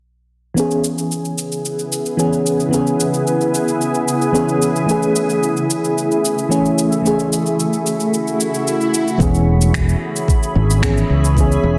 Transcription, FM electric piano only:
0, 0, Header, 1, 2, 480
1, 0, Start_track
1, 0, Key_signature, 4, "major"
1, 0, Tempo, 540541
1, 496, Time_signature, 4, 2, 24, 8
1, 10465, End_track
2, 0, Start_track
2, 0, Title_t, "FM electric piano"
2, 0, Program_c, 0, 5
2, 483, Note_on_c, 0, 52, 69
2, 499, Note_on_c, 0, 59, 59
2, 513, Note_on_c, 0, 61, 60
2, 528, Note_on_c, 0, 68, 75
2, 682, Control_c, 0, 64, 127
2, 1901, Note_off_c, 0, 52, 0
2, 1909, Note_off_c, 0, 59, 0
2, 1916, Note_off_c, 0, 61, 0
2, 1923, Note_off_c, 0, 68, 0
2, 1926, Note_on_c, 0, 52, 69
2, 1932, Note_on_c, 0, 59, 64
2, 1943, Note_on_c, 0, 61, 58
2, 1949, Note_on_c, 0, 68, 77
2, 2376, Note_off_c, 0, 52, 0
2, 2385, Note_off_c, 0, 59, 0
2, 2387, Note_on_c, 0, 52, 66
2, 2391, Note_off_c, 0, 61, 0
2, 2394, Note_off_c, 0, 68, 0
2, 2405, Note_on_c, 0, 59, 64
2, 2421, Note_on_c, 0, 61, 58
2, 2435, Note_on_c, 0, 68, 78
2, 3813, Note_off_c, 0, 52, 0
2, 3822, Note_off_c, 0, 59, 0
2, 3830, Note_off_c, 0, 61, 0
2, 3837, Note_off_c, 0, 68, 0
2, 3838, Note_on_c, 0, 52, 70
2, 3848, Note_on_c, 0, 59, 65
2, 3855, Note_on_c, 0, 61, 66
2, 3862, Note_on_c, 0, 68, 76
2, 4298, Note_off_c, 0, 52, 0
2, 4303, Note_off_c, 0, 59, 0
2, 4307, Note_off_c, 0, 61, 0
2, 4310, Note_off_c, 0, 68, 0
2, 4312, Note_on_c, 0, 52, 70
2, 4327, Note_on_c, 0, 57, 63
2, 4342, Note_on_c, 0, 61, 62
2, 4348, Control_c, 0, 64, 0
2, 4360, Note_on_c, 0, 68, 81
2, 4486, Control_c, 0, 64, 127
2, 5736, Note_off_c, 0, 52, 0
2, 5743, Note_off_c, 0, 57, 0
2, 5750, Note_off_c, 0, 61, 0
2, 5759, Note_off_c, 0, 68, 0
2, 5761, Note_on_c, 0, 52, 76
2, 5772, Note_on_c, 0, 57, 69
2, 5779, Note_on_c, 0, 61, 67
2, 5785, Note_on_c, 0, 68, 76
2, 6220, Note_off_c, 0, 52, 0
2, 6225, Note_off_c, 0, 57, 0
2, 6229, Note_off_c, 0, 61, 0
2, 6231, Note_on_c, 0, 52, 69
2, 6232, Note_off_c, 0, 68, 0
2, 6248, Note_on_c, 0, 57, 61
2, 6262, Note_on_c, 0, 61, 61
2, 6279, Note_on_c, 0, 68, 82
2, 7655, Note_off_c, 0, 52, 0
2, 7663, Note_off_c, 0, 57, 0
2, 7670, Note_off_c, 0, 61, 0
2, 7679, Note_off_c, 0, 68, 0
2, 8147, Note_on_c, 0, 52, 69
2, 8160, Note_on_c, 0, 59, 65
2, 8178, Note_on_c, 0, 61, 64
2, 8189, Control_c, 0, 64, 0
2, 8194, Note_on_c, 0, 68, 78
2, 8349, Control_c, 0, 64, 127
2, 9573, Note_off_c, 0, 52, 0
2, 9580, Note_off_c, 0, 59, 0
2, 9588, Note_off_c, 0, 61, 0
2, 9596, Note_off_c, 0, 68, 0
2, 9602, Note_on_c, 0, 52, 74
2, 9611, Note_on_c, 0, 59, 65
2, 9619, Note_on_c, 0, 61, 71
2, 9626, Note_on_c, 0, 68, 82
2, 10060, Note_off_c, 0, 52, 0
2, 10065, Note_off_c, 0, 59, 0
2, 10069, Note_off_c, 0, 61, 0
2, 10072, Note_off_c, 0, 68, 0
2, 10077, Note_on_c, 0, 52, 71
2, 10095, Note_on_c, 0, 59, 64
2, 10110, Note_on_c, 0, 61, 68
2, 10126, Note_on_c, 0, 68, 78
2, 10465, Note_off_c, 0, 52, 0
2, 10465, Note_off_c, 0, 59, 0
2, 10465, Note_off_c, 0, 61, 0
2, 10465, Note_off_c, 0, 68, 0
2, 10465, End_track
0, 0, End_of_file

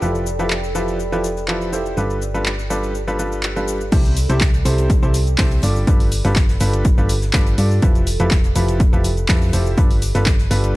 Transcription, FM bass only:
0, 0, Header, 1, 2, 480
1, 0, Start_track
1, 0, Tempo, 487805
1, 20, Time_signature, 4, 2, 24, 8
1, 10588, End_track
2, 0, Start_track
2, 0, Title_t, "FM bass"
2, 0, Program_c, 0, 39
2, 19, Note_on_c, 0, 29, 87
2, 1917, Note_off_c, 0, 29, 0
2, 1939, Note_on_c, 0, 31, 84
2, 3837, Note_off_c, 0, 31, 0
2, 3859, Note_on_c, 0, 36, 97
2, 4201, Note_off_c, 0, 36, 0
2, 4226, Note_on_c, 0, 36, 102
2, 4557, Note_off_c, 0, 36, 0
2, 4578, Note_on_c, 0, 36, 97
2, 4921, Note_off_c, 0, 36, 0
2, 4946, Note_on_c, 0, 36, 100
2, 5277, Note_off_c, 0, 36, 0
2, 5299, Note_on_c, 0, 36, 97
2, 5517, Note_off_c, 0, 36, 0
2, 5539, Note_on_c, 0, 31, 99
2, 5757, Note_off_c, 0, 31, 0
2, 5779, Note_on_c, 0, 31, 96
2, 6121, Note_off_c, 0, 31, 0
2, 6147, Note_on_c, 0, 31, 100
2, 6477, Note_off_c, 0, 31, 0
2, 6500, Note_on_c, 0, 31, 103
2, 6841, Note_off_c, 0, 31, 0
2, 6867, Note_on_c, 0, 31, 99
2, 7197, Note_off_c, 0, 31, 0
2, 7220, Note_on_c, 0, 31, 98
2, 7437, Note_off_c, 0, 31, 0
2, 7460, Note_on_c, 0, 43, 97
2, 7677, Note_off_c, 0, 43, 0
2, 7699, Note_on_c, 0, 29, 94
2, 8041, Note_off_c, 0, 29, 0
2, 8067, Note_on_c, 0, 29, 98
2, 8397, Note_off_c, 0, 29, 0
2, 8419, Note_on_c, 0, 29, 102
2, 8761, Note_off_c, 0, 29, 0
2, 8786, Note_on_c, 0, 29, 97
2, 9117, Note_off_c, 0, 29, 0
2, 9140, Note_on_c, 0, 41, 100
2, 9357, Note_off_c, 0, 41, 0
2, 9380, Note_on_c, 0, 29, 96
2, 9597, Note_off_c, 0, 29, 0
2, 9619, Note_on_c, 0, 31, 98
2, 9961, Note_off_c, 0, 31, 0
2, 9988, Note_on_c, 0, 31, 102
2, 10318, Note_off_c, 0, 31, 0
2, 10340, Note_on_c, 0, 31, 100
2, 10588, Note_off_c, 0, 31, 0
2, 10588, End_track
0, 0, End_of_file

